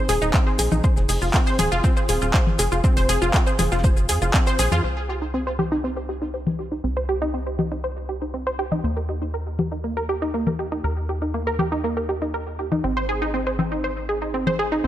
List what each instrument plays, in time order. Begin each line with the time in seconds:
0.09 analog synth bass D#1, synth pluck G#4, snare, open hi-hat, shaker
0.22 analog synth bass D#1, synth pluck D#4, shaker
0.34 synth pluck C4, kick, snare, clap, shaker
0.46 synth pluck C5, snare
0.58 analog synth bass A#1, synth pluck G#4, snare, open hi-hat, shaker
0.72 analog synth bass A#1, synth pluck D#4, low conga, shaker
0.84 synth pluck C5, kick, shaker
0.97 analog synth bass F1, snare, shaker
1.09 analog synth bass F1, synth pluck G#4, open hi-hat, shaker
1.22 analog synth bass F1, synth pluck F4, shaker
1.34 synth pluck C4, kick, snare, clap, shaker
1.47 synth pluck C5, snare, shaker
1.59 analog synth bass D#1, synth pluck G#4, open hi-hat, low conga, shaker
1.72 analog synth bass F1, synth pluck F4, shaker
1.84 synth pluck C4, kick, shaker
1.97 synth pluck C5, shaker
2.09 analog synth bass D#1, synth pluck G#4, open hi-hat, shaker
2.21 analog synth bass D#1, synth pluck F4, snare, shaker
2.34 synth pluck C5, kick, snare, clap, shaker
2.47 snare, low conga
2.59 analog synth bass F1, synth pluck G#4, snare, open hi-hat, shaker
2.72 analog synth bass F1, synth pluck F4, shaker
2.84 synth pluck C4, kick, shaker
2.97 analog synth bass F1, synth pluck C5, snare, open hi-hat, shaker
3.09 analog synth bass F1, synth pluck G#4, open hi-hat, shaker
3.22 analog synth bass F1, synth pluck F4, shaker
3.33 synth pluck C4, kick, snare, clap, shaker
3.47 synth pluck C5, shaker
3.59 analog synth bass F1, synth pluck G#4, snare, open hi-hat, low conga, shaker
3.72 analog synth bass F1, synth pluck F4, snare, shaker
3.77 snare, shaker
3.84 synth pluck C5, kick, shaker
3.97 shaker
4.09 analog synth bass F2, synth pluck G#4, snare, open hi-hat, shaker
4.22 analog synth bass F1, synth pluck F4, shaker
4.34 synth pluck C4, kick, snare, clap, shaker
4.46 synth pluck C5, snare, shaker
4.59 analog synth bass A#1, synth pluck G#4, snare, open hi-hat, shaker
4.72 analog synth bass F2, synth pluck F4, low conga, shaker
4.84 analog synth bass C2, synth pluck C5
5.09 synth pluck G4
5.22 synth pluck D#4
5.34 synth pluck C4
5.47 synth pluck C5
5.59 synth pluck G4, low conga
5.72 synth pluck D#4
5.84 synth pluck C4
5.97 synth pluck C5
6.09 synth pluck G4
6.22 synth pluck D#4
6.34 synth pluck C5
6.47 low conga
6.59 synth pluck G4
6.72 synth pluck D#4
6.84 analog synth bass C2, synth pluck C4
6.97 synth pluck C5
7.09 synth pluck G4
7.22 synth pluck D#4
7.34 synth pluck C4
7.47 synth pluck C5
7.59 synth pluck G4, low conga
7.72 synth pluck D#4
7.84 synth pluck C5
8.09 synth pluck G4
8.22 synth pluck D#4
8.34 synth pluck C4
8.47 synth pluck C5
8.59 synth pluck G4
8.72 synth pluck D#4, low conga
8.84 analog synth bass D#2, synth pluck A#3
8.97 synth pluck A#4
9.09 synth pluck G4
9.22 synth pluck D#4
9.34 synth pluck A#4
9.59 synth pluck G4, low conga
9.72 synth pluck D#4
9.84 synth pluck A#3
9.97 synth pluck A#4
10.09 synth pluck G4
10.22 synth pluck D#4
10.34 synth pluck A#3
10.47 synth pluck A#4, low conga
10.59 synth pluck G4
10.72 synth pluck D#4
10.84 analog synth bass D#2, synth pluck A#4
11.09 synth pluck G4
11.22 synth pluck D#4
11.34 synth pluck A#3
11.47 synth pluck A#4
11.59 synth pluck G4, low conga
11.72 synth pluck D#4
11.84 synth pluck A#3
11.97 synth pluck A#4
12.09 synth pluck G4
12.22 synth pluck D#4
12.34 synth pluck A#4
12.59 synth pluck G4
12.72 synth pluck D#4, low conga
12.84 analog synth bass G#1, synth pluck C4
12.97 synth pluck C5
13.09 synth pluck G#4
13.22 synth pluck D#4
13.34 synth pluck C4
13.47 synth pluck C5
13.59 synth pluck C4, low conga
13.72 synth pluck D#4
13.84 synth pluck C5
14.09 synth pluck G#4
14.22 synth pluck D#4
14.34 synth pluck C4
14.47 synth pluck C5, low conga
14.59 synth pluck G#4
14.72 synth pluck D#4
14.84 analog synth bass G#1, synth pluck C4